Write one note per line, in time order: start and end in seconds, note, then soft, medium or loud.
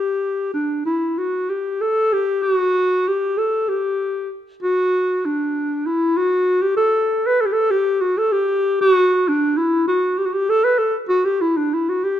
0.00 0.51 G4 medium
0.54 0.83 D4 medium
0.86 1.19 E4 medium
1.18 1.51 F#4 medium
1.49 1.83 G4 medium
1.81 2.15 A4 loud
2.13 2.43 G4 loud
2.43 2.55 G4 loud
2.55 3.10 F#4 loud
3.08 3.39 G4 medium
3.38 3.70 A4 medium
3.69 4.30 G4 medium
4.63 5.27 F#4 loud
5.25 5.88 D4 medium
5.86 6.18 E4 medium
6.17 6.64 F#4 loud
6.62 6.76 G4 medium
6.77 7.28 A4 loud
7.26 7.42 B4 loud
7.41 7.48 A4 medium
7.46 7.54 G4 medium
7.53 7.73 A4 loud
7.71 8.03 G4 medium
8.01 8.20 F#4 medium
8.18 8.34 A4 loud
8.32 8.79 G4 loud
8.81 8.92 G4 loud
8.92 9.30 F#4 loud
9.28 9.59 D4 medium
9.57 9.87 E4 medium
9.88 10.20 F#4 medium
10.18 10.27 G4 medium
10.25 10.35 F#4 medium
10.33 10.51 G4 medium
10.50 10.66 A4 loud
10.64 10.80 B4 medium
10.78 10.95 A4 medium
11.09 11.27 F#4 medium
11.25 11.43 G4 medium
11.41 11.59 E4 medium
11.57 11.75 D4 medium
11.74 11.91 E4 medium
11.89 12.05 F#4 medium
12.04 12.20 G4 medium